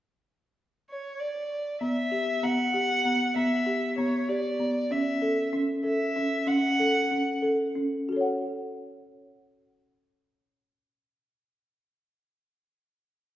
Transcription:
0.90 violin C#5
1.20 violin D5
1.81 marimba B3, violin E5
2.12 marimba G4
2.43 marimba B3, violin F#5
2.74 marimba G4
3.05 marimba B3
3.36 marimba B3, violin E5
3.66 marimba G4
3.98 marimba B3, violin C#5
4.29 marimba G4, violin D5
4.60 marimba B3
4.91 marimba C#4, violin E5
5.22 marimba A4
5.53 marimba C#4
5.84 marimba A4, violin E5
6.16 marimba C#4
6.47 marimba C#4, violin F#5
6.79 marimba A4
7.11 marimba C#4
7.42 marimba A4
7.75 marimba C#4
8.09 marimba F#4 A4
8.16 marimba C#5
8.21 marimba F#5

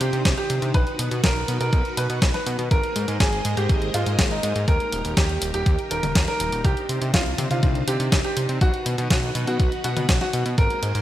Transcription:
Already playing: string machine D4 D#4 C5
0.01 analog synth bass C3, grand piano G4, closed hi-hat
0.13 analog synth bass C3, closed hi-hat
0.25 analog synth bass C2, kick, snare, closed hi-hat
0.37 grand piano G4, closed hi-hat
0.50 analog synth bass C3, closed hi-hat
0.62 analog synth bass C3, closed hi-hat
0.74 analog synth bass B1, string machine F#4 B4, grand piano B4, kick, closed hi-hat
0.87 closed hi-hat
0.99 analog synth bass B2, closed hi-hat
1.11 analog synth bass B2, closed hi-hat
1.23 analog synth bass B1, grand piano A#4, kick, snare, closed hi-hat
1.36 closed hi-hat
1.48 analog synth bass B2, closed hi-hat
1.60 analog synth bass B2, grand piano A#4, closed hi-hat
1.73 analog synth bass B1, kick, closed hi-hat
1.85 closed hi-hat
1.97 analog synth bass B2, grand piano B4, closed hi-hat
2.10 analog synth bass B2, closed hi-hat
2.22 analog synth bass B1, kick, snare, closed hi-hat
2.34 grand piano B4, snare, closed hi-hat
2.46 analog synth bass B2, closed hi-hat
2.59 analog synth bass B2, closed hi-hat
2.71 analog synth bass G#1, string machine G#3 G#4 A#4 C5 D#5, grand piano A#4, kick, closed hi-hat
2.83 closed hi-hat
2.96 analog synth bass G#2, closed hi-hat
3.08 analog synth bass G#2, closed hi-hat
3.20 analog synth bass G#1, grand piano G#4, kick, snare, closed hi-hat
3.33 closed hi-hat
3.45 analog synth bass G#2, closed hi-hat
3.57 analog synth bass G#2, grand piano G4, closed hi-hat
3.69 analog synth bass G#1, kick, closed hi-hat
3.82 closed hi-hat
3.94 analog synth bass G#2, grand piano F4, closed hi-hat
4.06 analog synth bass G#2, closed hi-hat
4.19 analog synth bass G#1, kick, snare, closed hi-hat
4.31 grand piano D#4, closed hi-hat
4.43 analog synth bass G#2, closed hi-hat
4.56 analog synth bass G#2, closed hi-hat
4.68 analog synth bass D#2, string machine D#4 G4, grand piano A#4, kick, closed hi-hat
4.80 closed hi-hat
4.92 analog synth bass D#1, closed hi-hat
5.05 analog synth bass D#1, closed hi-hat
5.17 analog synth bass D#2, grand piano G4, kick, snare, closed hi-hat
5.29 closed hi-hat
5.42 analog synth bass D#1, closed hi-hat
5.54 analog synth bass D#1, grand piano G4, closed hi-hat
5.66 analog synth bass D#2, kick, closed hi-hat
5.79 closed hi-hat
5.91 analog synth bass D#1, grand piano A#4, closed hi-hat
6.03 analog synth bass D#1, closed hi-hat, high tom
6.15 analog synth bass D#2, kick, snare, closed hi-hat
6.28 grand piano A#4, snare, closed hi-hat
6.40 analog synth bass D#1, closed hi-hat
6.52 analog synth bass D#1, closed hi-hat
6.65 analog synth bass C2, string machine D4 C5, grand piano G4, kick, closed hi-hat
6.77 closed hi-hat
6.89 analog synth bass C3, closed hi-hat
7.01 analog synth bass C3, closed hi-hat
7.14 analog synth bass C2, grand piano F4, kick, snare, closed hi-hat
7.26 closed hi-hat
7.38 analog synth bass C3, closed hi-hat, high tom
7.51 analog synth bass C3, grand piano F4, closed hi-hat
7.63 analog synth bass C2, kick, closed hi-hat, high tom
7.75 closed hi-hat
7.87 analog synth bass C3, grand piano G4, closed hi-hat
8.00 analog synth bass C3, closed hi-hat
8.12 analog synth bass C2, kick, snare, closed hi-hat
8.24 grand piano G4, closed hi-hat
8.37 analog synth bass C3, closed hi-hat
8.49 analog synth bass C3, closed hi-hat
8.61 analog synth bass B1, string machine F#4 B4, grand piano F#4, kick, closed hi-hat
8.74 closed hi-hat
8.86 analog synth bass B2, closed hi-hat
8.98 analog synth bass B2, closed hi-hat
9.10 analog synth bass B1, grand piano F#4, kick, snare, closed hi-hat
9.23 closed hi-hat
9.35 analog synth bass B2, closed hi-hat
9.47 analog synth bass B2, grand piano F#4, closed hi-hat
9.60 analog synth bass B1, kick, closed hi-hat
9.72 closed hi-hat
9.84 analog synth bass B2, grand piano F#4, closed hi-hat
9.97 analog synth bass B2, closed hi-hat, high tom
10.09 analog synth bass B1, kick, snare, closed hi-hat
10.21 grand piano F#4, snare, closed hi-hat
10.33 analog synth bass B2, closed hi-hat
10.46 analog synth bass B2, closed hi-hat
10.58 analog synth bass G#1, string machine G#3 G#4 A#4 C5 D#5, grand piano A#4, kick, closed hi-hat
10.70 closed hi-hat
10.83 analog synth bass G#2, closed hi-hat
10.95 analog synth bass G#2, closed hi-hat

